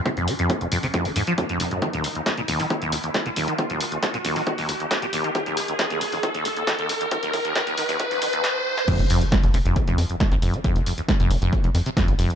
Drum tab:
CC |----------------|----------------|----------------|----------------|
HH |xxoxxxooxooxxxox|xxoxxxooxxoxxxox|xxoxxxooxooxxxox|xxoxxxooxxoxxxox|
SD |----------------|----o-------o---|----o-------o---|----o-------o---|
BD |o---o---o---o---|o---o---o---o---|o---o---o---o---|o---o---o---o---|

CC |----------------|x---------------|----------------|
HH |xxoxxxooxoox----|xxoxxxoxxxoxxxox|xxoxxxoxxxoxxxox|
SD |----o-------o--o|----o-------o---|----o-------o---|
BD |o-o-o---o-------|o---o---o---o---|o---o---o---o---|